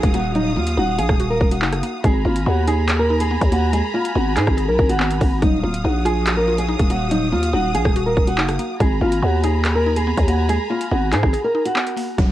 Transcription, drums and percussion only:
0.03 kick medium
0.03 closed hi-hat medium
0.14 closed hi-hat medium
0.35 closed hi-hat medium
0.67 closed hi-hat medium
0.99 closed hi-hat medium
1.09 kick loud
1.09 cross-stick medium
1.20 closed hi-hat medium
1.41 kick loud
1.51 closed hi-hat medium
1.62 clap loud
1.73 cross-stick medium
1.73 closed hi-hat medium
1.83 closed hi-hat medium
2.04 kick loud
2.04 closed hi-hat medium
2.36 closed hi-hat medium
2.68 closed hi-hat medium
2.89 clap loud
2.89 closed hi-hat medium
3.20 closed hi-hat medium
3.42 kick medium
3.42 closed hi-hat medium
3.52 closed hi-hat medium
3.73 closed hi-hat medium
4.05 closed hi-hat medium
4.37 clap medium
4.37 closed hi-hat medium
4.47 kick loud
4.47 cross-stick medium
4.58 closed hi-hat medium
4.79 kick medium
4.89 closed hi-hat medium
5.00 clap loud
5.11 closed hi-hat medium
5.21 kick loud
5.21 open hi-hat medium
5.42 kick loud
5.42 closed hi-hat medium
5.74 closed hi-hat medium
6.06 closed hi-hat medium
6.27 clap loud
6.27 closed hi-hat medium
6.58 closed hi-hat medium
6.79 kick medium
6.79 closed hi-hat medium
6.90 closed hi-hat medium
7.11 closed hi-hat medium
7.43 closed hi-hat medium
7.75 closed hi-hat medium
7.85 kick loud
7.85 cross-stick medium
7.96 closed hi-hat medium
8.17 kick medium
8.27 closed hi-hat medium
8.38 clap loud
8.49 cross-stick medium
8.49 closed hi-hat medium
8.59 closed hi-hat medium
8.80 kick loud
8.80 closed hi-hat medium
9.12 closed hi-hat medium
9.44 closed hi-hat medium
9.65 clap loud
9.65 closed hi-hat medium
9.96 closed hi-hat medium
10.18 kick medium
10.18 closed hi-hat medium
10.28 closed hi-hat medium
10.49 closed hi-hat medium
10.81 closed hi-hat medium
11.13 clap medium
11.13 closed hi-hat medium
11.23 kick loud
11.23 cross-stick medium
11.34 closed hi-hat medium
11.65 closed hi-hat medium
11.76 clap loud
11.87 closed hi-hat medium
11.97 open hi-hat medium
12.18 kick loud
12.18 closed hi-hat medium

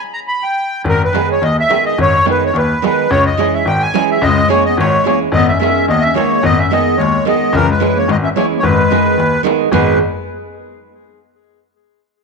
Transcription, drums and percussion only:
0.86 darbuka dum medium
1.15 darbuka tek medium
1.43 darbuka tek medium
1.71 darbuka tek medium
1.99 darbuka dum loud
2.26 darbuka tek medium
2.56 darbuka tek medium
2.84 darbuka tek medium
3.11 darbuka dum medium
3.40 darbuka tek medium
3.68 darbuka tek medium
3.95 darbuka tek medium
4.24 darbuka dum loud
4.38 darbuka tek soft
4.50 darbuka tek medium
4.67 darbuka tek soft
4.81 darbuka tek medium
5.07 darbuka tek medium
5.23 darbuka tek soft
5.34 darbuka dum medium
5.63 darbuka tek medium
5.91 darbuka tek medium
6.18 darbuka tek medium
6.46 darbuka dum medium
6.73 darbuka tek medium
7.01 darbuka tek medium
7.27 darbuka tek medium
7.55 darbuka dum loud
7.82 darbuka tek medium
8.09 darbuka tek medium
8.37 darbuka tek medium
8.65 darbuka dum loud
8.79 darbuka tek soft
8.92 darbuka tek medium
9.20 darbuka tek medium
9.34 darbuka tek soft
9.47 darbuka tek medium
9.73 darbuka dum medium

